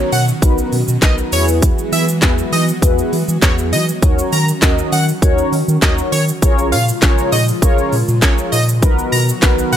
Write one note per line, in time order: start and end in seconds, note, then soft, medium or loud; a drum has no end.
0.00 1.31 D#3 medium
0.00 6.39 F#3 medium
0.00 0.16 B3 loud
0.00 3.99 B3 medium
0.00 1.29 C#4 medium
0.00 0.16 D#4 medium
0.00 0.16 F#4 medium
0.00 6.39 F#4 loud
0.00 0.16 A#4 medium
0.00 0.16 C#5 loud
0.12 0.32 B2 loud
0.12 0.25 F#5 medium
0.12 open hi-hat medium
0.12 shaker medium
0.28 shaker medium
0.42 0.62 B1 loud
0.42 0.76 B3 loud
0.42 0.76 D#4 loud
0.42 0.76 F#4 medium
0.42 0.76 A#4 medium
0.42 0.76 B4 loud
0.42 kick loud
0.42 closed hi-hat medium
0.42 shaker medium
0.58 shaker medium
0.72 0.83 B2 loud
0.72 open hi-hat medium
0.72 shaker soft
0.88 0.98 B2 loud
0.88 shaker medium
1.02 1.22 B1 loud
1.02 1.31 B3 medium
1.02 1.33 D#4 medium
1.02 1.31 F#4 medium
1.02 1.33 A#4 medium
1.02 1.32 B4 medium
1.02 1.15 D#5 medium
1.02 kick loud
1.02 snare medium
1.02 clap loud
1.02 closed hi-hat medium
1.02 shaker medium
1.18 shaker soft
1.32 1.71 E2 medium
1.32 4.00 E3 medium
1.32 4.00 G#3 medium
1.32 2.05 B3 medium
1.32 2.05 E4 medium
1.32 2.05 F#4 medium
1.32 2.05 G#4 medium
1.32 2.05 B4 medium
1.32 1.45 C#5 medium
1.32 open hi-hat medium
1.32 shaker medium
1.48 shaker medium
1.62 kick loud
1.62 closed hi-hat medium
1.62 shaker medium
1.78 shaker medium
1.92 2.24 E3 loud
1.92 2.05 E5 medium
1.92 open hi-hat medium
1.92 shaker medium
2.08 shaker medium
2.22 2.42 E2 loud
2.22 2.56 B3 loud
2.22 2.56 E4 medium
2.22 2.56 F#4 medium
2.22 2.56 G#4 medium
2.22 2.56 B4 loud
2.22 kick loud
2.22 snare medium
2.22 clap loud
2.22 closed hi-hat medium
2.22 shaker medium
2.38 shaker medium
2.52 2.72 E3 loud
2.52 2.65 D#5 medium
2.52 open hi-hat medium
2.52 shaker medium
2.68 shaker medium
2.82 3.02 E2 loud
2.82 3.16 B3 loud
2.82 3.16 E4 medium
2.82 3.16 F#4 medium
2.82 3.16 G#4 medium
2.82 3.16 B4 loud
2.82 kick loud
2.82 closed hi-hat medium
2.82 shaker medium
2.98 shaker medium
3.13 3.23 E3 loud
3.13 open hi-hat medium
3.13 shaker soft
3.28 3.38 E3 loud
3.28 shaker medium
3.42 3.74 E2 loud
3.42 3.76 B3 medium
3.42 3.76 E4 medium
3.42 3.76 F#4 medium
3.42 3.76 G#4 medium
3.42 3.76 B4 medium
3.42 3.55 C#5 medium
3.42 kick loud
3.42 snare medium
3.42 clap loud
3.42 closed hi-hat medium
3.42 shaker medium
3.58 shaker soft
3.73 3.92 E3 loud
3.73 3.85 D#5 medium
3.73 open hi-hat loud
3.73 shaker medium
3.89 shaker medium
4.02 4.22 D#2 loud
4.02 6.40 D#3 medium
4.02 4.36 C#4 medium
4.02 6.40 C#4 medium
4.02 4.36 D#4 medium
4.02 4.36 F#4 medium
4.02 4.36 A#4 medium
4.02 4.36 C#5 loud
4.02 kick loud
4.02 closed hi-hat medium
4.02 shaker medium
4.19 shaker medium
4.32 4.52 D#3 loud
4.32 4.45 A#5 medium
4.32 open hi-hat medium
4.32 shaker medium
4.48 shaker medium
4.62 4.82 D#2 loud
4.62 4.96 C#4 loud
4.62 4.96 D#4 medium
4.62 4.96 F#4 medium
4.62 4.96 A#4 medium
4.62 4.96 D#5 loud
4.62 kick loud
4.62 snare medium
4.62 clap loud
4.62 closed hi-hat medium
4.62 shaker medium
4.78 shaker medium
4.92 5.12 D#3 loud
4.92 5.05 F#5 medium
4.92 open hi-hat medium
4.92 shaker medium
5.08 shaker medium
5.22 5.42 D#2 loud
5.22 5.56 C#4 loud
5.22 5.56 D#4 medium
5.22 5.56 F#4 medium
5.22 5.56 A#4 medium
5.22 5.56 C#5 loud
5.22 kick loud
5.22 closed hi-hat medium
5.22 shaker medium
5.38 shaker soft
5.52 5.63 D#3 loud
5.52 open hi-hat medium
5.52 shaker soft
5.68 5.77 D#3 loud
5.68 shaker medium
5.82 6.02 D#2 loud
5.82 6.16 C#4 medium
5.82 6.16 D#4 medium
5.82 6.16 F#4 medium
5.82 6.16 A#4 medium
5.82 6.16 C#5 medium
5.82 5.95 D#5 medium
5.82 kick loud
5.82 snare medium
5.82 clap loud
5.82 closed hi-hat medium
5.82 shaker medium
5.98 shaker soft
6.12 6.32 D#3 loud
6.12 6.25 C#5 medium
6.12 open hi-hat loud
6.12 shaker medium
6.28 shaker medium
6.42 6.74 A#1 loud
6.42 8.80 C#3 medium
6.42 8.80 F3 medium
6.42 8.80 G#3 medium
6.42 6.76 C#4 loud
6.42 6.76 F4 medium
6.42 8.80 F4 loud
6.42 6.76 G#4 medium
6.42 6.76 A#4 medium
6.42 6.76 C#5 loud
6.42 kick loud
6.42 closed hi-hat medium
6.42 shaker medium
6.59 shaker medium
6.72 6.92 A#2 loud
6.72 6.85 F5 medium
6.72 open hi-hat medium
6.72 shaker medium
6.88 shaker medium
7.02 7.22 A#1 loud
7.02 7.36 C#4 medium
7.02 7.36 F4 medium
7.02 7.36 G#4 medium
7.02 7.36 A#4 medium
7.02 7.36 C#5 loud
7.02 kick loud
7.02 snare medium
7.02 clap loud
7.02 closed hi-hat medium
7.02 shaker medium
7.18 shaker medium
7.32 7.52 A#2 loud
7.32 7.45 D#5 medium
7.32 open hi-hat medium
7.32 shaker medium
7.48 shaker medium
7.62 7.82 A#1 loud
7.62 7.96 C#4 loud
7.62 7.96 F4 medium
7.62 7.96 G#4 medium
7.62 7.96 A#4 medium
7.62 7.96 C#5 loud
7.62 kick loud
7.62 closed hi-hat medium
7.62 shaker medium
7.78 shaker medium
7.93 8.03 A#2 loud
7.93 open hi-hat medium
7.93 shaker soft
8.08 8.24 A#2 loud
8.08 shaker medium
8.22 8.42 A#1 loud
8.22 8.56 C#4 medium
8.22 8.56 F4 medium
8.22 8.56 G#4 medium
8.22 8.56 A#4 medium
8.22 8.35 C#5 medium
8.22 8.56 C#5 medium
8.22 kick loud
8.22 snare medium
8.22 clap loud
8.22 closed hi-hat medium
8.22 shaker medium
8.38 shaker soft
8.52 8.84 A#2 loud
8.52 8.65 D#5 medium
8.52 open hi-hat medium
8.52 shaker medium
8.69 shaker medium
8.82 9.02 B1 loud
8.82 9.77 D#3 medium
8.82 9.77 F#3 medium
8.82 9.16 B3 loud
8.82 9.77 B3 medium
8.82 9.16 D#4 medium
8.82 9.16 F#4 medium
8.82 9.77 F#4 loud
8.82 9.16 A#4 medium
8.82 9.16 B4 loud
8.82 kick loud
8.82 closed hi-hat medium
8.82 shaker medium
8.99 shaker medium
9.12 9.32 B2 loud
9.12 9.25 A#5 medium
9.12 open hi-hat medium
9.12 shaker medium
9.29 shaker medium
9.42 9.62 B1 loud
9.42 9.76 B3 loud
9.42 9.76 D#4 medium
9.42 9.76 F#4 medium
9.42 9.76 A#4 medium
9.42 9.76 B4 loud
9.42 kick loud
9.42 snare medium
9.42 clap loud
9.42 closed hi-hat medium
9.42 shaker medium
9.59 shaker medium
9.72 9.77 B2 loud
9.72 9.77 F#5 medium
9.72 open hi-hat medium
9.72 shaker medium